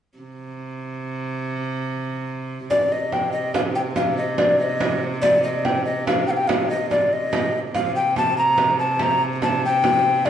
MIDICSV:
0, 0, Header, 1, 4, 480
1, 0, Start_track
1, 0, Tempo, 419874
1, 202, Time_signature, 6, 3, 24, 8
1, 11774, End_track
2, 0, Start_track
2, 0, Title_t, "Recorder"
2, 0, Program_c, 0, 74
2, 3090, Note_on_c, 0, 74, 80
2, 3340, Note_on_c, 0, 75, 78
2, 3357, Note_off_c, 0, 74, 0
2, 3577, Note_on_c, 0, 79, 75
2, 3595, Note_off_c, 0, 75, 0
2, 3795, Note_off_c, 0, 79, 0
2, 3802, Note_on_c, 0, 75, 72
2, 4030, Note_off_c, 0, 75, 0
2, 4054, Note_on_c, 0, 77, 80
2, 4123, Note_off_c, 0, 77, 0
2, 4291, Note_on_c, 0, 79, 72
2, 4360, Note_off_c, 0, 79, 0
2, 4530, Note_on_c, 0, 77, 78
2, 4755, Note_off_c, 0, 77, 0
2, 4772, Note_on_c, 0, 75, 73
2, 5008, Note_on_c, 0, 74, 72
2, 5025, Note_off_c, 0, 75, 0
2, 5245, Note_off_c, 0, 74, 0
2, 5252, Note_on_c, 0, 75, 82
2, 5755, Note_off_c, 0, 75, 0
2, 5963, Note_on_c, 0, 74, 82
2, 6192, Note_off_c, 0, 74, 0
2, 6214, Note_on_c, 0, 75, 78
2, 6461, Note_on_c, 0, 79, 79
2, 6478, Note_off_c, 0, 75, 0
2, 6684, Note_off_c, 0, 79, 0
2, 6691, Note_on_c, 0, 75, 82
2, 6916, Note_off_c, 0, 75, 0
2, 6941, Note_on_c, 0, 77, 82
2, 7161, Note_off_c, 0, 77, 0
2, 7166, Note_on_c, 0, 79, 78
2, 7209, Note_on_c, 0, 77, 63
2, 7227, Note_off_c, 0, 79, 0
2, 7280, Note_on_c, 0, 79, 76
2, 7298, Note_off_c, 0, 77, 0
2, 7402, Note_on_c, 0, 77, 86
2, 7419, Note_off_c, 0, 79, 0
2, 7648, Note_off_c, 0, 77, 0
2, 7653, Note_on_c, 0, 75, 83
2, 7877, Note_off_c, 0, 75, 0
2, 7897, Note_on_c, 0, 74, 78
2, 8151, Note_on_c, 0, 75, 88
2, 8168, Note_off_c, 0, 74, 0
2, 8682, Note_off_c, 0, 75, 0
2, 8860, Note_on_c, 0, 77, 85
2, 9079, Note_off_c, 0, 77, 0
2, 9099, Note_on_c, 0, 79, 84
2, 9319, Note_off_c, 0, 79, 0
2, 9344, Note_on_c, 0, 81, 87
2, 9561, Note_off_c, 0, 81, 0
2, 9579, Note_on_c, 0, 82, 85
2, 10021, Note_off_c, 0, 82, 0
2, 10052, Note_on_c, 0, 81, 79
2, 10315, Note_on_c, 0, 82, 96
2, 10332, Note_off_c, 0, 81, 0
2, 10541, Note_off_c, 0, 82, 0
2, 10782, Note_on_c, 0, 81, 81
2, 10998, Note_off_c, 0, 81, 0
2, 11034, Note_on_c, 0, 79, 98
2, 11724, Note_on_c, 0, 74, 84
2, 11741, Note_off_c, 0, 79, 0
2, 11774, Note_off_c, 0, 74, 0
2, 11774, End_track
3, 0, Start_track
3, 0, Title_t, "Viola da gamba"
3, 0, Program_c, 1, 42
3, 207, Note_on_c, 1, 48, 60
3, 3077, Note_off_c, 1, 48, 0
3, 3084, Note_on_c, 1, 48, 55
3, 8845, Note_off_c, 1, 48, 0
3, 8852, Note_on_c, 1, 48, 66
3, 11774, Note_off_c, 1, 48, 0
3, 11774, End_track
4, 0, Start_track
4, 0, Title_t, "Frame drum"
4, 3093, Note_on_c, 9, 64, 58
4, 3207, Note_off_c, 9, 64, 0
4, 3570, Note_on_c, 9, 64, 66
4, 3684, Note_off_c, 9, 64, 0
4, 3815, Note_on_c, 9, 64, 23
4, 3929, Note_off_c, 9, 64, 0
4, 4050, Note_on_c, 9, 64, 85
4, 4164, Note_off_c, 9, 64, 0
4, 4295, Note_on_c, 9, 64, 24
4, 4409, Note_off_c, 9, 64, 0
4, 4525, Note_on_c, 9, 64, 78
4, 4640, Note_off_c, 9, 64, 0
4, 5008, Note_on_c, 9, 64, 80
4, 5123, Note_off_c, 9, 64, 0
4, 5253, Note_on_c, 9, 64, 25
4, 5367, Note_off_c, 9, 64, 0
4, 5492, Note_on_c, 9, 64, 86
4, 5606, Note_off_c, 9, 64, 0
4, 5733, Note_on_c, 9, 64, 23
4, 5847, Note_off_c, 9, 64, 0
4, 5976, Note_on_c, 9, 64, 77
4, 6091, Note_off_c, 9, 64, 0
4, 6457, Note_on_c, 9, 64, 77
4, 6571, Note_off_c, 9, 64, 0
4, 6705, Note_on_c, 9, 64, 27
4, 6819, Note_off_c, 9, 64, 0
4, 6942, Note_on_c, 9, 64, 84
4, 7056, Note_off_c, 9, 64, 0
4, 7419, Note_on_c, 9, 64, 84
4, 7533, Note_off_c, 9, 64, 0
4, 7900, Note_on_c, 9, 64, 74
4, 8015, Note_off_c, 9, 64, 0
4, 8138, Note_on_c, 9, 64, 24
4, 8252, Note_off_c, 9, 64, 0
4, 8376, Note_on_c, 9, 64, 87
4, 8490, Note_off_c, 9, 64, 0
4, 8854, Note_on_c, 9, 64, 73
4, 8968, Note_off_c, 9, 64, 0
4, 9331, Note_on_c, 9, 64, 74
4, 9445, Note_off_c, 9, 64, 0
4, 9568, Note_on_c, 9, 64, 23
4, 9683, Note_off_c, 9, 64, 0
4, 9804, Note_on_c, 9, 64, 77
4, 9919, Note_off_c, 9, 64, 0
4, 10048, Note_on_c, 9, 64, 23
4, 10162, Note_off_c, 9, 64, 0
4, 10281, Note_on_c, 9, 64, 74
4, 10395, Note_off_c, 9, 64, 0
4, 10768, Note_on_c, 9, 64, 76
4, 10882, Note_off_c, 9, 64, 0
4, 11015, Note_on_c, 9, 64, 25
4, 11130, Note_off_c, 9, 64, 0
4, 11246, Note_on_c, 9, 64, 80
4, 11360, Note_off_c, 9, 64, 0
4, 11496, Note_on_c, 9, 64, 22
4, 11610, Note_off_c, 9, 64, 0
4, 11726, Note_on_c, 9, 64, 73
4, 11774, Note_off_c, 9, 64, 0
4, 11774, End_track
0, 0, End_of_file